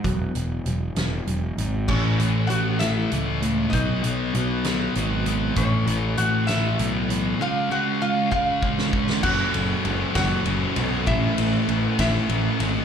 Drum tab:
CC |------------|x-----------|------------|------------|
RD |------------|------------|------------|------------|
HH |x-x-x-x-x-x-|--x-x-x-x-x-|x-x-x-x-x-x-|x-x-x-x-x-x-|
SD |------o-----|------o-----|------o-----|------o-----|
BD |o-----------|o-----------|o-----------|o-----------|

CC |------------|x-----------|------------|
RD |------------|--x-x-x-x-x-|x-x-x-x-x-x-|
HH |------------|------------|------------|
SD |---------o-o|------o-----|------o-----|
BD |------o-o-o-|o-----o-----|o-----o-----|